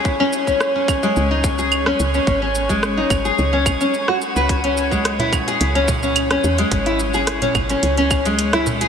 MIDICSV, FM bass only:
0, 0, Header, 1, 2, 480
1, 0, Start_track
1, 0, Tempo, 555556
1, 44, Time_signature, 4, 2, 24, 8
1, 7672, End_track
2, 0, Start_track
2, 0, Title_t, "FM bass"
2, 0, Program_c, 0, 39
2, 1008, Note_on_c, 0, 37, 95
2, 1675, Note_off_c, 0, 37, 0
2, 1726, Note_on_c, 0, 37, 88
2, 1901, Note_off_c, 0, 37, 0
2, 1964, Note_on_c, 0, 32, 94
2, 2633, Note_off_c, 0, 32, 0
2, 2682, Note_on_c, 0, 32, 82
2, 2859, Note_off_c, 0, 32, 0
2, 2925, Note_on_c, 0, 37, 95
2, 3156, Note_off_c, 0, 37, 0
2, 3161, Note_on_c, 0, 35, 80
2, 3253, Note_off_c, 0, 35, 0
2, 3768, Note_on_c, 0, 37, 71
2, 4673, Note_off_c, 0, 37, 0
2, 4845, Note_on_c, 0, 37, 96
2, 5513, Note_off_c, 0, 37, 0
2, 5564, Note_on_c, 0, 40, 92
2, 5740, Note_off_c, 0, 40, 0
2, 5801, Note_on_c, 0, 32, 95
2, 6472, Note_off_c, 0, 32, 0
2, 6523, Note_on_c, 0, 32, 85
2, 6700, Note_off_c, 0, 32, 0
2, 6765, Note_on_c, 0, 37, 88
2, 7672, Note_off_c, 0, 37, 0
2, 7672, End_track
0, 0, End_of_file